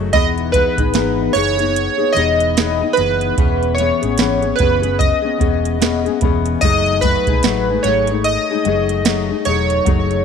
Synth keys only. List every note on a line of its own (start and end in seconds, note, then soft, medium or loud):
0.13 0.27 D#5 loud
0.52 1.36 B4 medium
1.33 2.17 C#5 medium
2.13 2.98 D#5 loud
2.93 3.72 B4 medium
3.75 4.60 C#5 medium
4.56 4.99 B4 medium
4.99 6.17 D#5 medium
6.61 6.99 D#5 loud
7.01 7.85 B4 medium
7.83 8.25 C#5 medium
8.24 9.49 D#5 medium
9.45 10.22 C#5 medium